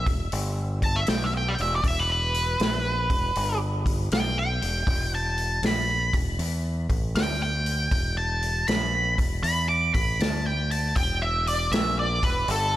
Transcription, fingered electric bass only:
0.06 0.30 E1 medium
0.33 1.04 G1 loud
1.09 1.55 B1 loud
1.59 1.83 E1 loud
1.84 2.56 E1 medium
2.60 3.07 A#1 medium
3.10 3.34 E1 medium
3.36 4.08 G1 loud
4.12 4.59 B1 medium
4.62 4.85 E1 loud
4.87 5.59 E1 medium
5.62 6.10 A#1 medium
6.13 6.37 E1 medium
6.39 6.86 E2 medium
6.90 7.13 A1 medium
7.15 7.87 D2 medium
7.92 8.64 E1 medium
8.68 9.15 A#1 loud
9.19 9.42 E1 medium
9.43 9.91 E2 loud
9.95 10.18 A1 medium
10.20 10.92 D2 medium
10.96 11.68 E1 medium
11.71 12.19 A#1 loud
12.23 12.47 E1 medium
12.48 12.77 G1 loud

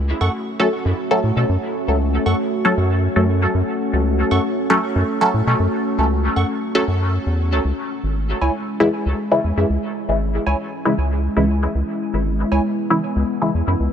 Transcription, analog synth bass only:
0.00 0.13 C#2 medium
0.21 0.29 F#2 loud
0.85 0.93 F#2 loud
1.23 1.31 A2 medium
1.36 1.44 B2 loud
1.49 1.57 F#2 loud
1.88 2.18 C#2 medium
2.26 2.34 F#2 loud
2.77 3.08 F#2 medium
3.16 3.46 F#2 loud
3.54 3.62 F#2 loud
3.93 4.23 C#2 medium
4.31 4.39 F#2 medium
4.96 5.03 F#2 loud
5.34 5.42 A2 medium
5.47 5.55 B2 loud
5.59 5.67 F#2 loud
5.98 6.29 C#2 loud
6.36 6.44 F#2 medium
6.88 7.18 F#2 loud
7.26 7.53 E2 medium
7.52 7.60 C#2 medium
7.65 7.73 C#2 loud
8.03 8.34 G#1 loud
8.41 8.49 C#2 medium
9.06 9.13 C#2 loud
9.44 9.52 E2 medium
9.57 9.65 F#2 loud
9.70 9.78 C#2 loud
10.08 10.39 G#1 medium
10.47 10.55 C#2 medium
10.98 11.28 C#2 loud
11.37 11.67 C#2 loud
11.75 11.83 C#2 loud
12.13 12.44 G#1 medium
12.52 12.60 C#2 medium
13.16 13.24 C#2 loud
13.54 13.62 E2 medium
13.67 13.75 F#2 loud
13.80 13.88 C#2 loud

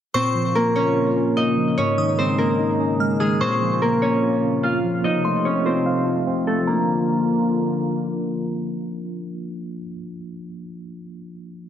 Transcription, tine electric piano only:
0.14 1.16 A#2 medium
0.35 1.37 F3 medium
0.55 1.36 A#3 medium
0.76 1.15 C#4 medium
0.96 1.77 F4 loud
1.17 1.78 C#4 medium
1.37 1.78 A#3 medium
1.57 1.78 F3 medium
1.78 2.80 G#2 medium
1.98 3.00 D#3 medium
2.19 2.99 G#3 medium
2.39 2.79 C#4 medium
2.59 3.41 D#4 loud
2.80 3.41 C#4 medium
3.00 3.41 G#3 medium
3.21 3.41 D#3 medium
3.41 4.43 A#2 medium
3.61 4.63 F3 medium
3.81 4.62 A#3 medium
4.02 4.42 C#4 medium
4.23 5.04 F4 medium
4.43 5.04 C#4 medium
4.63 5.04 A#3 medium
4.84 5.03 F3 medium
5.04 6.06 F3 medium
5.25 6.27 A3 medium
5.45 6.26 C4 medium
5.66 6.05 F4 medium
5.86 6.67 F5 loud
6.06 6.67 F4 medium
6.27 6.68 C4 medium
6.47 6.67 A3 medium
6.61 9.75 F3 medium
6.65 9.79 A#3 medium
6.65 9.83 D4 medium
6.73 9.87 F4 medium

